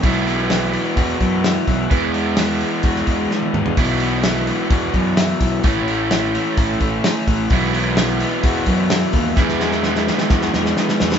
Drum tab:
HH |o-o-o-o-o-o-o-o-|o-o-o-o-o-o-----|o-o-o-o-o-o-o-o-|o-o-o-o-o-o-o-o-|
SD |----o-------o---|----o----o--o---|----o-------o---|----o-------o---|
T1 |----------------|-------------o--|----------------|----------------|
T2 |----------------|--------------o-|----------------|----------------|
FT |----------------|---------------o|----------------|----------------|
BD |o-------o-o---o-|o-------o-o-----|o-------o-o---o-|o-------o-o---o-|

HH |o-o-o-o-o-o-o-o-|----------------|
SD |----o-------o---|oooooooooooooooo|
T1 |----------------|----------------|
T2 |----------------|----------------|
FT |----------------|----------------|
BD |o-------o-o---o-|o-------o-------|